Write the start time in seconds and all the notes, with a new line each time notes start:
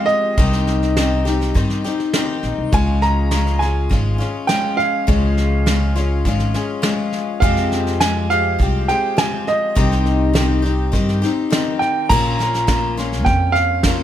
Already playing: F3 G#3 C4 G4
0.06 D#5, snare
0.37 C2 C3 D#3 C4 D#4 G4, kick, snare
0.52 snare
0.67 snare
0.83 snare
0.97 D#3 C4 D#4, snare
1.01 G4
1.25 C4 D#4 G4, snare
1.41 snare
1.54 G2 D#3 C4 D#4 G4, kick, snare
1.70 snare
1.84 C4 D#4 G4, snare
2.00 snare
2.13 D#3 C4 D#4 G4, snare
2.43 A#1, snare
2.58 C2
2.72 C#2 C#3 F3 G#3 C#4 F4 G#5, kick, snare
3.02 A#5, snare
3.31 F3 G#3 C#4 F4, snare
3.47 snare
3.59 C#4 F4 G#5, snare
3.64 G#3
3.89 G#1 F3 G#3 C#4 F4, kick, snare
4.18 G#3 C#4 F4, snare
4.47 F3 G#3 C#4 F4 G5, snare
4.77 F5, snare
5.07 C#2 C#3 F3 G#3 C#4 F4, kick, snare
5.37 snare
5.66 F3 G#3 C#4 F4, snare
5.96 C#4 F4, snare
6.00 G#3
6.25 G#1 F3 G#3 C#4 F4, kick, snare
6.40 snare
6.54 G#3 C#4 F4, snare
6.82 F3 G#3 C#4 F4, snare
7.12 snare
7.40 F2 C3 F3 G#3 C4 F5, kick, snare
7.44 G4
7.57 snare
7.72 snare
7.87 snare
8.00 F3 G#3 C4 G4 G#5, snare
8.30 F3 G#3 C4 G4 F5, snare
8.59 C2 F3 G#3 C4 G4, kick, snare
8.88 F3 G#3 C4 G4 G5, snare
9.17 F3 G#3 C4 G4 G#5, snare
9.47 D#5, snare
9.75 C2 C3 D#3 C4 D#4 G4, kick, snare
9.91 snare
10.06 snare
10.33 D#3 C4 D#4 G4, snare
10.62 C4 D#4 G4, snare
10.92 G2 D#3 C4 D#4 G4, kick, snare
11.09 snare
11.22 C4 D#4 G4, snare
11.50 D#3 C4 D#4 G4, snare
11.79 G5, snare
12.09 A#1 A#2 F3 A#3 C#4 F4 A#5, kick, snare, crash
12.39 A#3 C#4 F4, snare
12.54 snare
12.67 F3 A#3 C#4 F4, kick, snare
12.97 A#3 C#4 F4, snare
13.12 snare
13.25 F2 G5, kick, snare
13.52 F5, snare
13.83 F3 A#3 C#4, kick, snare
13.88 F4